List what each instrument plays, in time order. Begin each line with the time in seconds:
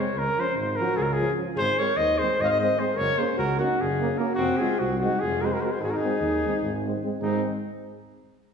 0.00 trumpet C#5
0.14 tuba C#2
0.18 trumpet A#4
0.37 trombone F3, french horn C#4, trumpet C5
0.55 tuba G#1, trumpet C5
0.76 trombone F3, french horn C#4, trumpet A#4
0.80 alto saxophone F#4
0.97 tuba C#2, alto saxophone F4, trumpet G#4
1.02 alto saxophone F#4, trumpet A#4
1.12 alto saxophone F4, trumpet G#4
1.18 trombone F3, french horn C#4
1.36 trombone F3, french horn C#4
1.56 tuba G#1, alto saxophone G#4, trumpet C5
1.78 trombone G#3, french horn C4, alto saxophone A#4, trumpet C#5
1.94 tuba D#2, alto saxophone C5, trumpet D#5
2.18 trombone G#3, french horn C4, alto saxophone G#4, trumpet C5
2.38 tuba G#1, alto saxophone C5, trumpet D#5
2.43 alto saxophone C#5, trumpet F5
2.48 alto saxophone C5, trumpet D#5
2.60 trombone G#3, french horn C4, alto saxophone C5, trumpet D#5
2.78 trombone G#3, french horn C4, alto saxophone G#4, trumpet C5
2.94 tuba F#1, alto saxophone A#4, trumpet C#5
3.17 trombone A#3, french horn C#4, alto saxophone G#4, trumpet C5
3.36 tuba C#2, alto saxophone F#4, trumpet A#4
3.59 trombone A#3, french horn C#4, alto saxophone D#4, trumpet F#4
3.78 tuba F#1, alto saxophone C#4, trumpet G#4
4.01 trombone A#3, french horn C#4
4.18 trombone A#3, french horn C#4, alto saxophone F#4, trumpet A#4
4.35 tuba F1, alto saxophone C4, trumpet F#4
4.57 trombone G#3, french horn C4, alto saxophone F4, trumpet G#4
4.79 tuba C2, alto saxophone C4, trumpet F#4
4.98 alto saxophone D#4, trumpet F#4
5.02 trombone G#3, french horn C4
5.20 tuba F1, alto saxophone F4, trumpet G#4
5.41 trombone G#3, french horn C4, alto saxophone F#4, trumpet A#4
5.45 alto saxophone G#4, trumpet C5
5.53 alto saxophone F#4, trumpet A#4
5.60 trombone G#3, french horn C4, alto saxophone G#4, trumpet C5
5.65 alto saxophone F#4, trumpet A#4
5.70 alto saxophone G#4, trumpet C5
5.79 tuba G#1, alto saxophone D#4, trumpet G#4
5.85 alto saxophone F#4
5.90 alto saxophone D#4, trumpet A#4
5.97 trumpet G#4
6.02 trombone G#3, french horn C4
6.20 tuba D#2
6.44 trombone G#3, french horn C4
6.62 tuba G#1
6.85 trombone G#3, french horn C4
7.03 trombone G#3, french horn C4
7.21 tuba G#1, trombone G#3, french horn C4, alto saxophone C4, trumpet D#4